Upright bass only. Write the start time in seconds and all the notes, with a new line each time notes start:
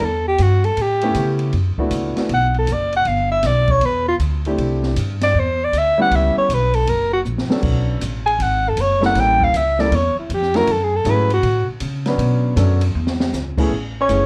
0.00 E2
0.39 G2
0.77 A2
1.15 C#3
1.53 F#2
1.78 muted upright bass stroke
1.90 C#2
2.16 muted upright bass stroke
2.29 B1
2.67 F#1
3.05 G1
3.43 B1
3.81 E2
4.19 D2
4.57 C2
4.96 G2
5.34 E2
5.73 D2
6.11 C#2
6.36 muted upright bass stroke
6.49 B1
6.87 F#1
7.25 A#1
7.50 muted upright bass stroke
7.62 B1
8.01 A1
8.39 G#1
8.76 F#1
9.15 A1
9.53 C#2
9.91 E2
10.17 muted upright bass stroke
10.29 F2
10.68 F#2
11.05 G#2
11.43 A2
11.68 muted upright bass stroke
11.81 C#3
12.18 B2
12.56 F#2
12.95 E2
13.33 C#2
13.71 A1
14.09 F#1